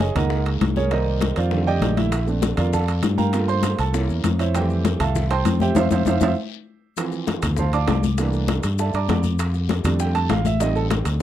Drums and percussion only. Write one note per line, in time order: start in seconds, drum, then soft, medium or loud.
0.00 high bongo medium
0.00 high conga loud
0.00 high timbale medium
0.00 short guiro medium
0.15 high bongo soft
0.15 high conga soft
0.15 low conga medium
0.15 high timbale medium
0.15 short guiro medium
0.30 high bongo medium
0.30 high conga soft
0.30 long guiro medium
0.46 high bongo soft
0.46 high conga soft
0.46 high timbale medium
0.61 high bongo soft
0.61 low bongo medium
0.61 high conga medium
0.61 high timbale medium
0.61 short guiro medium
0.76 high bongo soft
0.76 high conga medium
0.76 short guiro medium
0.91 high bongo medium
0.91 high timbale medium
0.91 long guiro medium
1.07 high conga soft
1.21 high bongo medium
1.21 high conga medium
1.21 high timbale medium
1.21 short guiro medium
1.36 high bongo soft
1.36 high timbale medium
1.36 short guiro medium
1.51 high bongo medium
1.51 high conga soft
1.51 long guiro medium
1.67 high bongo soft
1.67 high conga soft
1.82 high bongo soft
1.82 low bongo medium
1.82 high conga medium
1.82 high timbale medium
1.82 low timbale medium
1.82 short guiro medium
1.97 high bongo soft
1.97 high conga medium
1.97 high timbale medium
1.97 short guiro medium
2.12 high bongo medium
2.12 high timbale medium
2.12 long guiro medium
2.12 maracas medium
2.27 high conga soft
2.27 maracas soft
2.42 high bongo medium
2.42 high conga loud
2.42 high timbale medium
2.42 short guiro medium
2.42 maracas medium
2.57 high bongo soft
2.57 high conga soft
2.57 low conga medium
2.57 high timbale loud
2.57 short guiro medium
2.57 maracas soft
2.73 high bongo medium
2.73 high conga soft
2.73 low conga medium
2.73 long guiro medium
2.73 maracas medium
2.88 high bongo soft
2.88 high conga soft
2.88 high timbale medium
2.88 maracas soft
3.03 high bongo soft
3.03 low bongo medium
3.03 high conga medium
3.03 high timbale medium
3.03 short guiro medium
3.03 maracas medium
3.18 high bongo soft
3.18 high conga medium
3.18 short guiro medium
3.18 maracas soft
3.33 high bongo medium
3.33 high timbale medium
3.33 long guiro medium
3.33 maracas medium
3.48 high conga soft
3.48 maracas soft
3.63 high bongo medium
3.63 high conga medium
3.63 high timbale medium
3.63 short guiro medium
3.63 maracas medium
3.79 high bongo soft
3.79 high timbale medium
3.79 short guiro medium
3.79 maracas soft
3.94 high bongo medium
3.94 high conga soft
3.94 long guiro medium
3.94 maracas medium
4.09 high bongo soft
4.09 high conga soft
4.09 maracas soft
4.24 high bongo soft
4.24 low bongo medium
4.24 high conga medium
4.24 high timbale medium
4.24 short guiro medium
4.24 maracas medium
4.39 high bongo soft
4.39 high timbale medium
4.39 short guiro medium
4.39 maracas soft
4.55 high bongo medium
4.55 high conga soft
4.55 high timbale medium
4.55 long guiro medium
4.55 maracas medium
4.70 high conga soft
4.70 maracas soft
4.85 high bongo medium
4.85 high conga loud
4.85 high timbale medium
4.85 short guiro medium
4.85 maracas medium
5.00 high bongo soft
5.00 high conga soft
5.00 low conga medium
5.00 high timbale loud
5.00 short guiro medium
5.00 maracas soft
5.15 high bongo medium
5.15 high conga soft
5.15 low conga medium
5.15 long guiro medium
5.15 maracas medium
5.30 high bongo soft
5.30 high conga soft
5.30 high timbale medium
5.30 maracas soft
5.45 high bongo soft
5.45 low bongo medium
5.45 high conga medium
5.45 high timbale medium
5.45 short guiro medium
5.45 maracas medium
5.60 high bongo soft
5.60 high conga medium
5.60 short guiro medium
5.60 maracas soft
5.75 low bongo loud
5.75 high conga loud
5.75 high timbale loud
5.75 long guiro medium
5.75 maracas loud
5.91 low bongo loud
5.91 high conga medium
5.91 high timbale medium
5.91 long guiro loud
5.91 maracas medium
6.05 low bongo loud
6.05 high conga loud
6.05 high timbale medium
6.05 long guiro loud
6.05 maracas loud
6.21 low bongo medium
6.21 high conga loud
6.21 high timbale loud
6.21 long guiro loud
6.21 maracas loud
6.97 high bongo medium
6.97 high conga soft
6.97 high timbale medium
6.97 long guiro medium
6.97 maracas medium
7.12 high bongo soft
7.12 high conga soft
7.12 maracas soft
7.27 high bongo medium
7.27 high conga medium
7.27 high timbale medium
7.27 low timbale medium
7.27 short guiro medium
7.27 maracas soft
7.42 high bongo soft
7.42 high conga soft
7.42 low conga medium
7.42 high timbale loud
7.42 short guiro medium
7.42 maracas medium
7.57 high bongo medium
7.57 high conga soft
7.57 low conga medium
7.57 long guiro medium
7.57 maracas medium
7.73 high conga soft
7.73 high timbale medium
7.73 maracas soft
7.87 high bongo medium
7.87 low bongo medium
7.87 high conga medium
7.87 high timbale medium
7.87 low timbale medium
7.87 short guiro medium
7.87 maracas soft
8.03 high bongo soft
8.03 high conga medium
8.03 short guiro medium
8.03 maracas medium
8.18 high bongo medium
8.18 high conga soft
8.18 high timbale medium
8.18 long guiro medium
8.18 maracas medium
8.33 high bongo soft
8.33 high conga soft
8.33 maracas soft
8.48 high bongo medium
8.48 high conga loud
8.48 high timbale medium
8.48 low timbale medium
8.48 short guiro medium
8.48 maracas soft
8.63 high bongo soft
8.63 high conga soft
8.63 high timbale medium
8.63 short guiro medium
8.63 maracas medium
8.78 high bongo medium
8.78 high conga soft
8.78 long guiro medium
8.78 maracas medium
8.93 high conga soft
8.93 high timbale medium
8.93 maracas soft
9.08 high bongo medium
9.08 low bongo medium
9.08 high conga medium
9.08 high timbale medium
9.08 low timbale medium
9.08 short guiro medium
9.08 maracas soft
9.23 high bongo soft
9.23 high conga medium
9.23 short guiro medium
9.23 maracas medium
9.39 high bongo medium
9.39 high timbale loud
9.39 long guiro medium
9.39 maracas medium
9.54 high bongo soft
9.54 high conga soft
9.54 maracas soft
9.69 high bongo medium
9.69 high conga medium
9.69 high timbale medium
9.69 low timbale medium
9.69 short guiro medium
9.69 maracas soft
9.84 high bongo soft
9.84 high conga soft
9.84 low conga medium
9.84 high timbale loud
9.84 short guiro medium
9.84 maracas medium
9.99 high bongo medium
9.99 high conga soft
9.99 long guiro medium
9.99 maracas medium
10.15 high conga soft
10.15 high timbale medium
10.15 maracas soft
10.29 high bongo medium
10.29 low bongo medium
10.29 high conga medium
10.29 high timbale medium
10.29 low timbale medium
10.29 short guiro medium
10.29 maracas soft
10.45 high bongo soft
10.45 high conga medium
10.45 short guiro medium
10.45 maracas medium
10.60 high bongo medium
10.60 high timbale medium
10.60 long guiro medium
10.60 maracas loud
10.76 high bongo soft
10.76 high conga soft
10.76 maracas soft
10.90 high bongo medium
10.90 high conga medium
10.90 high timbale medium
10.90 low timbale medium
10.90 short guiro medium
10.90 maracas soft
11.05 high bongo soft
11.05 high conga soft
11.05 high timbale medium
11.05 short guiro medium
11.05 maracas medium